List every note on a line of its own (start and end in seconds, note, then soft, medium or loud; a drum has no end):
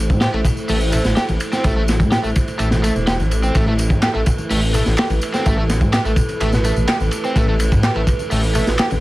0.00 0.11 A1 medium
0.00 9.00 A3 medium
0.00 9.00 E4 medium
0.00 9.00 A4 medium
0.00 3.53 C5 medium
0.10 0.28 A2 loud
0.10 kick medium
0.10 tambourine soft
0.10 high conga loud
0.21 0.27 G4 medium
0.21 snare loud
0.21 ride medium
0.21 tambourine soft
0.33 0.42 A1 medium
0.33 0.39 A3 medium
0.33 ride soft
0.45 kick medium
0.45 ride medium
0.45 tambourine medium
0.45 low conga medium
0.57 tambourine soft
0.69 1.00 A1 medium
0.69 0.78 A3 medium
0.69 open hi-hat medium
0.69 tambourine soft
0.69 high conga medium
0.81 tambourine soft
0.92 1.01 A3 medium
0.92 ride medium
0.92 tambourine medium
0.92 low conga medium
1.05 1.14 A1 loud
1.05 snare soft
1.05 tambourine soft
1.16 1.22 G4 medium
1.16 snare loud
1.16 ride medium
1.16 tambourine soft
1.28 1.38 A1 medium
1.28 ride soft
1.28 tambourine soft
1.28 high conga loud
1.40 ride medium
1.40 tambourine medium
1.52 1.64 C4 medium
1.52 snare soft
1.52 tambourine soft
1.64 2.01 A1 medium
1.64 1.73 A3 medium
1.64 kick loud
1.64 ride medium
1.64 tambourine soft
1.76 1.81 A3 medium
1.88 snare medium
1.88 ride medium
1.88 tambourine medium
2.00 2.18 A2 medium
2.00 kick medium
2.00 tambourine soft
2.00 high conga medium
2.12 2.17 G4 medium
2.12 snare loud
2.12 ride medium
2.12 tambourine soft
2.24 2.33 A1 medium
2.24 2.29 A3 medium
2.24 tambourine soft
2.36 kick medium
2.36 ride medium
2.36 tambourine medium
2.36 low conga medium
2.48 ride soft
2.48 tambourine soft
2.59 2.91 A1 medium
2.59 2.68 A3 medium
2.59 ride medium
2.59 tambourine soft
2.59 high conga medium
2.71 snare soft
2.71 tambourine soft
2.71 low conga medium
2.83 2.92 A3 medium
2.83 ride medium
2.83 tambourine medium
2.96 3.21 E1 loud
2.96 tambourine soft
2.96 low conga medium
3.07 3.12 G4 medium
3.07 snare loud
3.07 ride medium
3.07 tambourine soft
3.19 3.50 A1 loud
3.19 tambourine soft
3.19 high conga medium
3.31 ride medium
3.31 tambourine medium
3.43 3.55 C4 medium
3.43 tambourine soft
3.55 3.92 A1 loud
3.55 3.64 A3 medium
3.55 9.00 B4 medium
3.55 kick loud
3.55 ride medium
3.55 tambourine soft
3.68 3.72 A3 medium
3.78 ride medium
3.78 tambourine medium
3.78 muted conga medium
3.90 4.08 A2 medium
3.90 kick medium
3.90 tambourine soft
3.90 high conga medium
4.02 4.08 G4 medium
4.02 snare loud
4.02 clap loud
4.02 ride medium
4.02 tambourine soft
4.14 4.24 A1 medium
4.14 4.20 A3 medium
4.14 ride soft
4.26 kick medium
4.26 ride medium
4.26 tambourine medium
4.26 low conga medium
4.38 tambourine soft
4.38 muted conga medium
4.50 4.81 A1 medium
4.50 4.59 A3 medium
4.50 open hi-hat medium
4.50 tambourine soft
4.50 high conga medium
4.62 tambourine soft
4.74 4.82 A3 medium
4.74 ride medium
4.74 tambourine medium
4.74 muted conga soft
4.74 low conga medium
4.86 4.95 A1 loud
4.86 snare soft
4.86 tambourine soft
4.98 5.03 G4 medium
4.98 snare loud
4.98 clap loud
4.98 ride medium
4.98 tambourine soft
5.10 5.19 A1 loud
5.10 ride soft
5.10 tambourine soft
5.10 muted conga medium
5.10 high conga medium
5.21 ride medium
5.21 tambourine medium
5.34 5.45 C4 medium
5.34 snare soft
5.34 tambourine soft
5.46 5.83 A1 loud
5.46 5.54 A3 medium
5.46 kick loud
5.46 ride medium
5.46 tambourine soft
5.58 5.63 A3 medium
5.70 snare medium
5.70 ride medium
5.70 tambourine medium
5.70 muted conga medium
5.81 5.99 A2 medium
5.81 kick medium
5.81 tambourine soft
5.81 high conga medium
5.92 5.98 G4 medium
5.92 snare loud
5.92 clap loud
5.92 ride medium
5.92 tambourine soft
6.05 6.14 A1 medium
6.05 6.10 A3 medium
6.05 tambourine soft
6.16 kick loud
6.16 ride medium
6.16 tambourine medium
6.16 low conga medium
6.29 ride soft
6.29 tambourine soft
6.29 muted conga soft
6.40 6.72 A1 medium
6.40 6.49 A3 medium
6.40 ride medium
6.40 tambourine soft
6.40 high conga medium
6.53 snare soft
6.53 tambourine soft
6.53 low conga medium
6.64 6.73 A3 medium
6.64 ride medium
6.64 tambourine medium
6.76 6.85 A1 loud
6.76 tambourine soft
6.76 low conga medium
6.88 6.94 G4 medium
6.88 snare loud
6.88 clap medium
6.88 ride medium
6.88 tambourine soft
7.00 7.09 A1 loud
7.00 tambourine soft
7.00 high conga medium
7.11 ride medium
7.11 tambourine medium
7.24 7.36 C4 medium
7.24 tambourine soft
7.36 7.73 A1 loud
7.36 7.44 A3 medium
7.36 kick loud
7.36 ride medium
7.36 tambourine soft
7.49 7.53 A3 medium
7.59 ride medium
7.59 tambourine medium
7.59 muted conga medium
7.72 7.90 A2 loud
7.72 kick medium
7.72 tambourine soft
7.72 high conga medium
7.83 7.89 G4 medium
7.83 snare loud
7.83 clap loud
7.83 ride medium
7.83 tambourine soft
7.96 8.05 A1 medium
7.96 8.01 A3 medium
7.96 ride soft
8.07 kick loud
8.07 ride medium
8.07 tambourine medium
8.07 low conga medium
8.19 tambourine soft
8.19 muted conga soft
8.31 8.62 A1 medium
8.31 8.40 A3 medium
8.31 open hi-hat medium
8.31 tambourine soft
8.31 high conga medium
8.43 tambourine soft
8.55 8.63 A3 medium
8.55 ride medium
8.55 tambourine medium
8.55 muted conga soft
8.55 low conga medium
8.67 8.76 A1 loud
8.67 snare soft
8.67 tambourine soft
8.79 8.84 G4 medium
8.79 snare loud
8.79 clap loud
8.79 ride medium
8.79 tambourine soft
8.90 9.00 A1 medium
8.90 ride soft
8.90 tambourine soft
8.90 muted conga medium
8.90 high conga medium